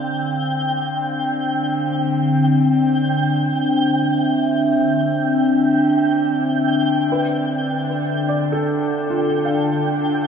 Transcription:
0.00 10.27 D3 medium
0.00 7.92 C4 medium
0.00 10.27 D4 medium
0.00 2.40 F5 medium
0.00 7.01 G5 medium
3.54 7.91 E5 medium
7.03 10.27 D3 medium
7.03 10.27 D4 medium
7.03 10.27 G5 medium
7.12 8.44 B4 soft
7.89 10.27 A4 medium
8.29 9.59 D5 soft
8.47 10.27 G5 medium
8.52 9.25 A4 medium
9.10 10.27 F4 medium
9.45 10.27 F5 soft

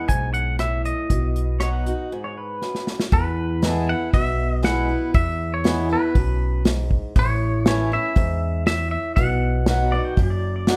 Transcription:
0.08 0.89 B1 medium
0.08 0.57 G#2 medium
0.08 0.33 G#5 loud
0.08 kick medium
0.08 closed hi-hat medium
0.34 0.60 F#5 medium
0.34 closed hi-hat medium
0.59 1.07 A2 medium
0.59 0.85 E5 medium
0.59 cross-stick medium
0.59 closed hi-hat medium
0.85 2.58 D#5 medium
0.85 closed hi-hat soft
1.10 1.90 B1 medium
1.10 2.07 B2 medium
1.10 kick loud
1.10 closed hi-hat medium
1.36 closed hi-hat medium
1.60 1.85 F#3 soft
1.60 1.85 B3 soft
1.60 1.86 D#4 medium
1.60 1.85 F#4 medium
1.60 1.73 C#5 medium
1.60 cross-stick loud
1.60 closed hi-hat medium
1.73 2.23 F#5 medium
1.86 2.11 D#4 soft
1.86 2.10 F#4 medium
1.86 closed hi-hat medium
2.12 2.60 G#2 medium
2.24 2.36 C#5 medium
2.38 2.86 B4 medium
2.62 3.10 F#2 medium
2.62 snare soft
2.75 snare medium
2.87 snare medium
3.00 snare medium
3.12 4.08 E2 loud
3.12 3.92 E2 medium
3.12 3.70 B4 loud
3.12 kick loud
3.12 open hi-hat medium
3.62 3.87 E3 medium
3.62 3.87 G#3 loud
3.62 3.88 B3 medium
3.62 3.88 E4 medium
3.62 snare loud
3.62 open hi-hat medium
3.70 3.91 A4 loud
3.89 4.13 B3 soft
3.89 4.13 E4 medium
3.89 4.13 F#5 loud
4.14 4.93 B1 medium
4.14 5.10 B2 medium
4.14 4.52 E5 loud
4.14 kick loud
4.14 open hi-hat medium
4.52 4.64 D#5 loud
4.63 4.87 E3 medium
4.63 4.88 G#3 medium
4.63 4.88 B3 loud
4.63 4.88 E4 loud
4.63 5.14 F#5 loud
4.63 snare loud
4.63 open hi-hat medium
4.89 5.14 B3 medium
4.89 5.13 E4 medium
5.14 6.10 E2 loud
5.14 5.94 E2 medium
5.14 5.53 E5 loud
5.14 kick loud
5.14 open hi-hat medium
5.54 5.92 C#5 medium
5.64 5.89 E3 medium
5.64 5.89 G#3 medium
5.64 5.89 B3 medium
5.64 5.89 E4 medium
5.64 snare loud
5.64 open hi-hat medium
5.90 6.15 B3 medium
5.90 6.14 E4 medium
5.90 6.63 B4 medium
6.15 6.95 B1 medium
6.15 6.63 F#2 medium
6.15 kick loud
6.15 open hi-hat medium
6.65 7.13 G#2 loud
6.65 snare loud
6.65 open hi-hat medium
6.91 kick medium
7.16 7.95 A1 loud
7.16 8.11 A2 loud
7.16 7.67 C#5 loud
7.16 kick loud
7.16 open hi-hat medium
7.66 7.90 E3 medium
7.66 7.90 A3 medium
7.66 7.91 C#4 medium
7.66 7.91 E4 medium
7.66 7.93 C#5 loud
7.66 snare loud
7.66 open hi-hat medium
7.92 8.16 C#4 medium
7.92 8.15 E4 medium
7.92 8.66 E5 loud
8.16 8.95 E2 medium
8.16 8.64 G#2 medium
8.16 kick loud
8.16 open hi-hat medium
8.67 9.15 A2 loud
8.67 8.90 E5 loud
8.67 snare loud
8.67 open hi-hat medium
8.91 9.16 E5 medium
9.16 9.96 B1 loud
9.16 10.13 B2 loud
9.16 10.13 F#5 loud
9.16 kick loud
9.16 open hi-hat medium
9.66 9.92 F#3 medium
9.66 9.92 B3 medium
9.66 9.92 D#4 medium
9.66 9.93 F#4 loud
9.66 snare loud
9.66 open hi-hat medium
9.92 10.18 D#4 soft
9.92 10.17 F#4 medium
9.92 10.04 D5 loud
10.05 10.29 G5 medium
10.17 10.77 F#1 medium
10.17 10.77 F#2 medium
10.17 kick loud
10.17 open hi-hat medium
10.30 10.54 D5 medium
10.56 10.77 D5 medium
10.67 10.77 F#3 loud
10.67 10.77 B3 medium
10.67 10.77 D#4 loud
10.67 10.77 F#4 medium
10.67 snare loud
10.67 open hi-hat soft

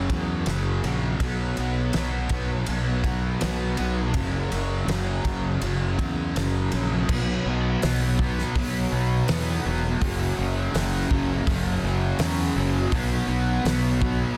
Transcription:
0.00 0.46 F#2 medium
0.00 0.12 C#3 medium
0.00 0.11 F#3 loud
0.10 0.43 E2 medium
0.10 0.47 C#3 medium
0.10 0.48 F#3 medium
0.10 kick medium
0.10 ride medium
0.46 0.80 F#1 medium
0.46 1.19 F#2 medium
0.46 0.85 C#3 medium
0.46 0.84 F#3 medium
0.46 snare loud
0.46 ride medium
0.84 1.17 A#1 medium
0.84 1.20 C#3 medium
0.84 1.21 F#3 medium
0.84 ride medium
1.20 1.53 B1 loud
1.20 1.93 B2 loud
1.20 1.60 F#3 loud
1.20 1.57 B3 loud
1.20 kick loud
1.20 ride medium
1.57 1.91 B1 medium
1.57 1.95 F#3 medium
1.57 1.95 B3 medium
1.57 ride medium
1.93 2.28 B1 medium
1.93 2.66 B2 medium
1.93 2.32 F#3 medium
1.93 2.29 B3 medium
1.93 snare loud
1.93 ride medium
2.29 2.64 B1 medium
2.29 2.68 F#3 medium
2.29 2.68 B3 medium
2.29 kick medium
2.29 ride medium
2.66 3.34 B1 medium
2.66 3.40 B2 medium
2.66 3.05 F#3 medium
2.66 3.02 B3 loud
2.66 ride medium
3.04 3.42 F#3 medium
3.04 3.42 B3 medium
3.04 kick medium
3.04 ride medium
3.41 3.75 B1 loud
3.41 4.12 B2 medium
3.41 3.79 F#3 medium
3.41 3.76 B3 medium
3.41 snare loud
3.41 ride loud
3.77 4.12 B1 medium
3.77 4.14 F#3 medium
3.77 4.12 B3 medium
3.77 ride medium
4.13 4.86 F#2 loud
4.13 4.51 C#3 loud
4.13 4.49 F#3 medium
4.13 kick loud
4.13 ride medium
4.50 4.85 F#1 medium
4.50 4.87 C#3 medium
4.50 4.88 F#3 medium
4.50 ride medium
4.87 5.21 F#1 medium
4.87 5.60 F#2 medium
4.87 5.25 C#3 medium
4.87 5.23 F#3 medium
4.87 snare loud
4.87 ride loud
5.24 5.58 F#1 medium
5.24 5.61 C#3 medium
5.24 5.62 F#3 medium
5.24 kick medium
5.24 ride medium
5.62 5.95 F#1 medium
5.62 6.35 F#2 medium
5.62 6.00 C#3 medium
5.62 5.97 F#3 loud
5.62 ride medium
5.98 6.31 E2 medium
5.98 6.36 C#3 medium
5.98 6.37 F#3 medium
5.98 kick medium
5.98 ride medium
6.36 6.69 F#1 medium
6.36 7.07 F#2 medium
6.36 6.74 C#3 medium
6.36 6.72 F#3 medium
6.36 snare loud
6.36 ride medium
6.72 7.06 A#1 medium
6.72 7.08 C#3 medium
6.72 7.07 F#3 medium
6.72 ride medium
7.09 7.38 B1 loud
7.09 7.82 B2 medium
7.09 7.48 F#3 loud
7.09 7.45 B3 loud
7.09 kick loud
7.09 crash loud
7.46 7.75 B1 medium
7.46 7.84 F#3 medium
7.46 7.84 B3 medium
7.82 8.42 B1 loud
7.82 8.54 B2 medium
7.82 8.21 F#3 medium
7.82 8.19 B3 medium
7.82 snare loud
7.82 open hi-hat medium
8.19 8.57 F#3 medium
8.19 8.57 B3 medium
8.19 kick loud
8.39 snare soft
8.55 8.85 B1 loud
8.55 9.27 B2 medium
8.55 8.93 F#3 medium
8.55 8.91 B3 loud
8.55 kick loud
8.55 open hi-hat medium
8.92 9.21 B1 medium
8.92 9.29 F#3 medium
8.92 9.29 B3 medium
9.28 9.59 E2 medium
9.28 9.99 B2 medium
9.28 9.67 F#3 medium
9.28 9.64 B3 medium
9.28 snare loud
9.28 open hi-hat medium
9.65 9.95 E1 medium
9.65 10.03 F#3 medium
9.65 10.00 B3 medium
10.01 10.31 F#1 loud
10.01 10.73 F#2 loud
10.01 10.38 C#3 loud
10.01 10.37 F#3 loud
10.01 kick loud
10.01 open hi-hat medium
10.37 10.68 F#1 medium
10.37 10.74 C#3 medium
10.37 10.75 F#3 medium
10.74 11.04 F#1 medium
10.74 11.46 F#2 medium
10.74 11.11 C#3 medium
10.74 11.11 F#3 loud
10.74 snare loud
10.74 open hi-hat medium
11.11 11.41 F#1 loud
11.11 11.47 C#3 medium
11.11 11.48 F#3 medium
11.11 kick medium
11.47 11.77 F#1 loud
11.47 12.19 F#2 medium
11.47 11.84 C#3 loud
11.47 11.83 F#3 medium
11.47 kick loud
11.47 open hi-hat medium
11.83 12.13 F#1 medium
11.83 12.20 C#3 medium
11.83 12.21 F#3 medium
12.19 12.49 E2 medium
12.19 12.91 F#2 medium
12.19 12.57 C#3 medium
12.19 12.56 F#3 medium
12.19 snare loud
12.19 open hi-hat medium
12.56 12.86 F#1 medium
12.56 12.92 C#3 medium
12.56 12.93 F#3 medium
12.92 13.22 B1 loud
12.92 13.64 B2 medium
12.92 13.29 F#3 loud
12.92 13.27 B3 loud
12.92 kick loud
12.92 open hi-hat medium
13.28 13.58 B1 loud
13.28 13.65 F#3 medium
13.28 13.65 B3 medium
13.64 14.24 B1 loud
13.64 14.37 B2 medium
13.64 14.03 F#3 medium
13.64 14.01 B3 medium
13.64 snare loud
13.64 open hi-hat medium
14.01 14.37 F#3 medium
14.01 14.37 B3 medium
14.01 kick loud

